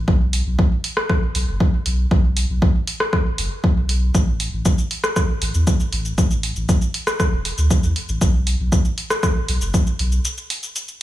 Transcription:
0.08 sub bass B1, kick
0.33 open hi-hat
0.46 sub bass B1
0.59 kick
0.84 open hi-hat
0.97 cross-stick
1.09 kick, cross-stick
1.35 sub bass B1, open hi-hat
1.48 sub bass F#1
1.60 kick
1.86 sub bass B1, open hi-hat
2.11 sub bass B1, kick
2.37 open hi-hat
2.49 sub bass B1
2.62 kick
2.87 open hi-hat
3.00 cross-stick
3.13 kick, cross-stick
3.38 sub bass F#1, open hi-hat
3.64 kick
3.76 sub bass B1
3.89 open hi-hat
4.15 sub bass A1, kick, shaker
4.40 open hi-hat
4.53 sub bass A1
4.65 kick, shaker
4.78 shaker
4.91 open hi-hat
5.04 cross-stick, shaker
5.16 kick, cross-stick, shaker
5.42 sub bass A1, open hi-hat
5.54 sub bass E2, shaker
5.67 kick, shaker
5.80 shaker
5.92 sub bass A1, open hi-hat
6.05 shaker
6.18 sub bass A1, kick, shaker
6.31 shaker
6.43 open hi-hat
6.56 sub bass A1, shaker
6.69 kick, shaker
6.82 shaker
6.94 open hi-hat
7.07 cross-stick, shaker
7.20 kick, cross-stick, shaker
7.32 sub bass E1
7.45 open hi-hat
7.58 sub bass D2, shaker
7.70 kick, shaker
7.83 sub bass E2, shaker
7.96 open hi-hat
8.09 sub bass A1, shaker
8.21 sub bass B1, kick, shaker
8.47 open hi-hat
8.60 sub bass B1
8.72 kick, shaker
8.85 shaker
8.98 open hi-hat
9.10 cross-stick, shaker
9.23 kick, cross-stick, shaker
9.48 sub bass B1, open hi-hat
9.61 sub bass F#1, shaker
9.74 kick, shaker
9.87 shaker
9.99 sub bass B1, open hi-hat
10.12 shaker
10.25 shaker
10.37 shaker
10.50 open hi-hat
10.63 shaker
10.76 open hi-hat, shaker
10.88 shaker

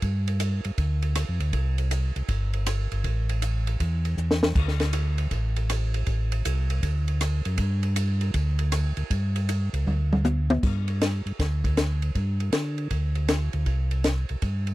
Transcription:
0.02 tonewheel organ G2, kick, ride
0.28 ride
0.40 hi-hat pedal, ride
0.64 tonewheel organ G2, ride
0.78 tonewheel organ D2, kick, ride
1.02 ride
1.15 cross-stick, hi-hat pedal, ride
1.29 tonewheel organ F2
1.40 tonewheel organ D2, ride
1.53 tonewheel organ C2, kick, ride
1.78 ride
1.91 hi-hat pedal, ride
2.16 tonewheel organ C2, ride
2.28 tonewheel organ G1, kick, ride
2.53 ride
2.66 cross-stick, hi-hat pedal, ride
2.92 tonewheel organ G1, ride
3.04 tonewheel organ A1, kick, ride
3.29 ride
3.42 hi-hat pedal, ride
3.67 ride
3.80 tonewheel organ E2, kick, ride
4.05 ride
4.17 tonewheel organ E2, hi-hat pedal
4.31 snare
4.43 snare
4.55 tonewheel organ D2, kick, crash
4.68 snare
4.80 snare, ride
4.93 hi-hat pedal, ride
5.18 ride
5.31 tonewheel organ A1, kick, ride
5.56 ride
5.70 cross-stick, hi-hat pedal, ride
5.94 ride
6.06 tonewheel organ A1, kick, ride
6.32 ride
6.45 tonewheel organ C2, hi-hat pedal, ride
6.70 ride
6.83 tonewheel organ D2, kick, ride
7.08 ride
7.21 cross-stick, hi-hat pedal, ride
7.45 tonewheel organ F#2, ride
7.58 tonewheel organ G2, kick, ride
7.83 ride
7.96 hi-hat pedal, ride
8.21 ride
8.34 tonewheel organ D2, kick, ride
8.59 ride
8.72 cross-stick, hi-hat pedal, ride
8.97 tonewheel organ D2, ride
9.10 tonewheel organ G2, kick, ride
9.36 ride
9.49 hi-hat pedal, ride
9.73 tonewheel organ C#2, ride
9.87 tonewheel organ D2, mid tom
10.13 mid tom
10.24 hi-hat pedal, high tom
10.50 high tom
10.63 tonewheel organ G2, kick, crash
10.88 ride
11.01 snare, hi-hat pedal, ride
11.26 tonewheel organ G2, ride
11.39 tonewheel organ D2, kick, snare, ride
11.64 kick, ride
11.77 snare, hi-hat pedal, ride
12.02 ride
12.15 tonewheel organ G2, kick, ride
12.40 ride
12.52 tonewheel organ D3, snare, hi-hat pedal, ride
12.78 ride
12.91 tonewheel organ D2, kick, ride
13.15 ride
13.28 snare, hi-hat pedal, ride
13.53 tonewheel organ D2, ride
13.66 tonewheel organ C2, kick, ride
13.91 ride
14.04 snare, hi-hat pedal, ride
14.29 tonewheel organ C2, ride
14.42 tonewheel organ G2, kick, ride
14.67 ride

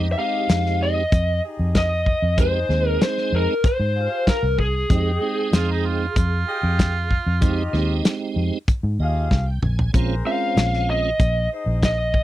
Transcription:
Already playing: fingered electric bass F2, horn section D#4 G4 D#5
0.12 lead electric guitar E5
0.18 tonewheel organ G#3 C4 D#4 G4, lead electric guitar F5
0.49 fingered electric bass F2, snare, closed hi-hat
0.66 snare
0.83 lead electric guitar D#5
1.12 fingered electric bass F2, kick, closed hi-hat
1.43 horn section D#4 G4 G#4 D#5
1.59 fingered electric bass F2
1.75 lead electric guitar D#5, kick, snare, closed hi-hat
2.06 kick
2.22 fingered electric bass F2
2.37 tonewheel organ G#3 C4 D#4 G4, horn section D#4 G#4 D#5, lead electric guitar C5, kick, closed hi-hat
2.69 fingered electric bass D#2, tonewheel organ G#3 C4 D#4 G#4, snare
2.89 lead electric guitar A#4
3.01 lead electric guitar C5, snare, closed hi-hat
3.18 snare
3.32 fingered electric bass F2, lead electric guitar A#4
3.64 lead electric guitar C5, muted fingered electric bass stroke, kick, closed hi-hat
3.80 fingered electric bass G#2
3.94 horn section F4 G4 G#4 F5
4.27 lead electric guitar A#4, kick, snare, closed hi-hat
4.43 fingered electric bass C2
4.59 lead electric guitar G#4, kick
4.90 fingered electric bass F2, tonewheel organ G#3 C4 D#4 G4, horn section G4 D#5 G5, kick, closed hi-hat
5.21 tonewheel organ G#3 C4 D#4 G5
5.53 fingered electric bass F2, harmonica F4, snare, closed hi-hat
5.71 harmonica D#4
5.86 harmonica F4
6.16 fingered electric bass F2, harmonica F4, kick, closed hi-hat
6.47 horn section G4 G#4 D#5 G5
6.63 fingered electric bass F2
6.79 kick, snare, closed hi-hat
7.11 kick
7.26 fingered electric bass F2
7.41 tonewheel organ G#3 C4 D#4 G4, horn section D#4 G4 D#5, kick, closed hi-hat
7.73 fingered electric bass D#2, tonewheel organ G#3 C4 D#4 G4, snare
8.05 snare, closed hi-hat
8.36 fingered electric bass F2
8.68 muted fingered electric bass stroke, kick, closed hi-hat
8.83 fingered electric bass G#2
8.99 fingered electric bass D#2, horn section F4 G4 G#4 F5, tonewheel organ D#5
9.31 fingered electric bass C2, tonewheel organ F5, kick, snare
9.46 tonewheel organ G5
9.62 fingered electric bass A#1, tonewheel organ G#5, mid tom
9.79 floor tom
9.92 fingered electric bass A#1, tonewheel organ G#3 C4 C#4 F4, horn section C4 G#4 A#4 C5, kick, closed hi-hat
10.25 tonewheel organ G#3 C4 C#4 F4, lead electric guitar F5
10.57 fingered electric bass A#1, snare, closed hi-hat
10.74 snare
10.90 lead electric guitar D#5
11.20 fingered electric bass A#1, kick, closed hi-hat
11.51 horn section D#4 G#4 C5 D#5
11.66 fingered electric bass A#1
11.83 lead electric guitar D#5, kick, snare, closed hi-hat
12.14 kick

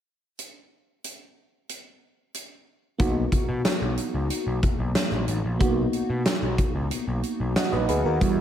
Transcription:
0.39 closed hi-hat
1.04 closed hi-hat
1.69 closed hi-hat
2.34 closed hi-hat
2.98 picked electric bass B1, fm electric piano A#3 B3 D#4 F#4, kick, closed hi-hat
3.32 kick, closed hi-hat
3.49 picked electric bass B2
3.65 snare, closed hi-hat
3.82 picked electric bass B1
3.97 closed hi-hat
4.14 picked electric bass C#2
4.30 closed hi-hat
4.46 picked electric bass B1
4.63 kick, closed hi-hat
4.79 picked electric bass B1
4.95 snare, closed hi-hat
5.12 picked electric bass A#1
5.28 picked electric bass A1, closed hi-hat
5.44 picked electric bass A#1
5.59 picked electric bass B1, fm electric piano A#3 B3 D#4 F#4, kick, closed hi-hat
5.93 closed hi-hat
6.10 picked electric bass B2
6.26 snare, closed hi-hat
6.42 picked electric bass B1
6.58 kick, closed hi-hat
6.75 picked electric bass C#2
6.91 closed hi-hat
7.07 picked electric bass B1
7.23 closed hi-hat
7.40 picked electric bass B1
7.56 fm electric piano D#5 F#5, snare, closed hi-hat
7.72 picked electric bass A#1, fm electric piano B4 D#5
7.88 picked electric bass D2, fm electric piano G#4 B4, closed hi-hat
8.05 picked electric bass D#2, fm electric piano F#4 A#4
8.21 picked electric bass E2, fm electric piano G3 B3 E4 F#4, kick, closed hi-hat

